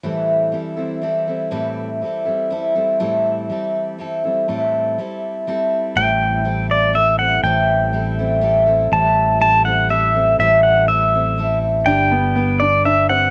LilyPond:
<<
  \new Staff \with { instrumentName = "Pedal steel guitar" } { \time 3/4 \key a \minor \tempo 4 = 122 r2. | r2. | r2. | r2. |
g''4. d''8 e''8 fis''8 | g''2~ g''8 r8 | a''4 a''8 fis''8 e''4 | e''8 fis''8 e''4. r8 |
g''4. d''8 e''8 fis''8 | }
  \new Staff \with { instrumentName = "Upright piano" } { \time 3/4 \key a \minor r2. | r2. | r2. | r2. |
r2. | r2. | r2. | r2. |
d'8 b8 b8 d'8 d'8 c'8 | }
  \new Staff \with { instrumentName = "Steel-string acoustic guitar" } { \time 3/4 \key a \minor <a, e g c' e' a'>4 <g c' e' a'>8 <g c' e' a'>8 <g c' e' a'>8 <g c' e' a'>8 | <a, e g c' e' a'>4 <g c' e' a'>8 <g c' e' a'>8 <g c' e' a'>8 <g c' e' a'>8 | <a, e g c' e' a'>4 <g c' e' a'>4 <g c' e' a'>8 <g c' e' a'>8 | <a, e g c' e' a'>4 <g c' e' a'>4 <g c' e' a'>4 |
<a, e g c' e' a'>4 <g c' e' a'>4 <g c' e' a'>8 <g c' e' a'>8 | <a, e g c' e' a'>4 <g c' e' a'>8 <g c' e' a'>8 <g c' e' a'>8 <g c' e' a'>8 | <a, e g c' e' a'>4 <g c' e' a'>8 <g c' e' a'>8 <g c' e' a'>8 <g c' e' a'>8 | <a, e g c' e' a'>4 <g c' e'>8 <g c' e' a'>8 <g c' e' a'>4 |
<g d' g' b'>4 <g d' g' b'>4 <g d' g' b'>8 <d' g' b'>8 | }
  \new Staff \with { instrumentName = "Fingered electric bass" } { \clef bass \time 3/4 \key a \minor r2. | r2. | r2. | r2. |
a,,2. | a,,2. | a,,2. | a,,2. |
g,,2. | }
>>